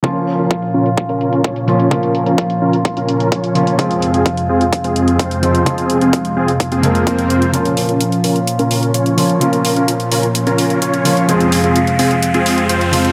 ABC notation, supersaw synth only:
X:1
M:4/4
L:1/16
Q:1/4=128
K:Bbm
V:1 name="Supersaw synth"
[DFB]3 [DFB] z2 [DFB] z2 [DFB]3 z4 | [DFB]3 [DFB] z2 [DFB] z2 [DFB]3 [Dd]4 | [CFA]3 [CFA] z2 [CFA] z2 [CFA]3 [Cc]4 | A3 [CFA] z2 [CFA] z2 [CFA]3 [CFc]4 |
[DFB]3 [DFB] z2 [DFB] z2 [DFB]3 [DFd]4 | [DFB]3 [DFB] z2 [DFB] z2 [DFB]3 [DFd]4 | [CFA]3 [CFA] z2 [CFA] z2 [CFA]3 [CFc]4 |]